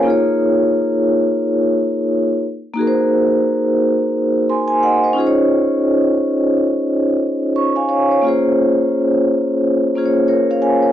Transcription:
vibraphone
Already playing: A#4
0.03 A#3 D#4 F4
0.08 G#4 C#5
2.74 A#3 D#4 F#4
2.79 G#4 A#4
2.87 C5
4.50 G#5 C6
4.68 G#5
4.83 D#5 F#5
5.04 C5 D#5
5.13 C#4 D#4 F4
5.18 G#4 C5
5.27 C#5
7.56 C#6
7.76 F5 G#5
7.89 C#5 F5
8.11 C#5
8.21 A#3 C#4 F4
8.27 G#4 C5
9.96 A#3 C#4 F4 G#4 C5
10.06 C#5
10.28 A#4 C#5
10.51 C#5 F5
10.62 F5 G#5
10.82 A#4 C#5

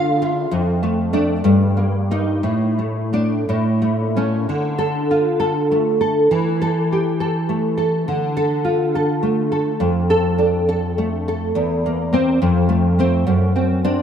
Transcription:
nylon-string guitar
Already playing: D3 F4 A4 F5
0.22 F4
0.51 F2
0.83 A3
1.13 A3 D4
1.44 G2
1.77 A#3
2.11 A#3 D#4
2.43 A2
2.79 A3
3.13 A3 D4
3.49 A2
3.82 A3
4.16 A3 C#4
4.49 D3
4.78 A4
5.11 F4
5.40 A4
5.72 A3
6.01 A4
6.31 E3
6.62 A4
6.92 G4
7.20 A4
7.49 A3
7.77 A4
8.08 D3
8.37 A4
8.65 F4
8.95 A4
9.23 A3
9.52 A4
9.80 F2
10.10 A4
10.38 D4
10.69 A4
10.98 A3
11.28 A4
11.55 E2
11.86 A#3
12.13 A#3 C4
12.42 F2
12.69 A3
12.99 A3 C4
13.27 F#2
13.56 C4
13.85 C4 D4

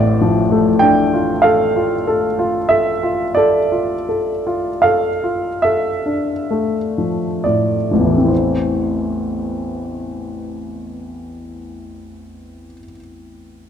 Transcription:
grand piano
Already playing: A1 A2 D5
0.21 F3
0.52 A3
0.79 D4 G5
1.14 F4
1.42 A4 F5
1.76 F4
2.07 A4
2.39 F4
2.69 A4 E5
3.03 F4
3.35 A4 D5
3.72 F4
4.09 A4
4.47 F4
4.82 A4 F5
5.24 F4
5.62 A4 E5
6.06 D4
6.51 A3
6.98 F3
7.44 A2 D5
7.91 A1 F3
7.99 E2
8.05 E3
8.11 A3
8.18 C4
8.24 E4 C5

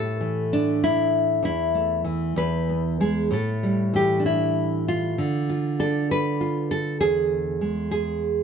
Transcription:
nylon-string guitar
Already playing: A2 A4
0.21 E3
0.53 D4
0.84 E4
1.43 E2 E4
1.74 A3
2.04 E3
2.36 E2 B4
2.69 B3
3.00 G#3 G#4
3.31 A2 A4
3.63 G3
3.93 E3 G4
4.20 D4
4.26 E4
4.88 F4
5.18 D3
5.49 F4
5.79 D4 A4
6.11 B4
6.41 F4
6.71 A4
7.00 E2 G#4
7.61 G#3
7.91 G#4

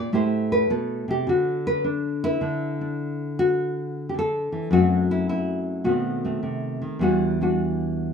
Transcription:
nylon-string guitar
Already playing: A#2 D5
0.13 A2 A3 E4 G4 C5
0.52 B4
0.70 B2 A4
1.08 C3 G4
1.27 D3 F#4
1.67 B4
1.84 D4
2.24 E4 B4
2.41 D3 D4
2.81 D4
3.39 F#4
4.09 G4
4.14 D3
4.19 A4
4.52 E3
4.71 F#2 F#3 A3 C4 F#4
5.11 E4
5.29 E4
5.84 B2 D#3 A3 C4 F#4
6.25 A3 C4
6.43 C3
6.82 D#3
6.99 E2 E3 G3 D4 F#4
7.41 G3 D4 F#4

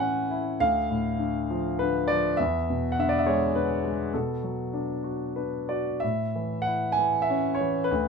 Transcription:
grand piano
Already playing: A2 E3 E4 E5 G#5
0.00 C#4 F#5
0.31 E4
0.60 D2 F5
0.90 A2
1.19 D3
1.50 F3
1.79 D3 B4
2.08 F3 D5
2.37 E2 E5
2.70 B2
2.92 F#5
2.99 D3 E5
3.09 D5
3.19 E5
3.26 G#3 C#5
3.55 D3 B4
3.84 G#3
4.14 B2 A4
4.43 F#3
4.73 D4
5.04 F#4
5.36 D4 B4
5.69 F#4 D5
6.00 A2 E5
6.36 E3
6.62 F#5
6.67 E4
6.92 G#5
6.98 E3
7.22 E5
7.30 C#4
7.55 C#5
7.60 E3
7.84 B4
7.91 D2

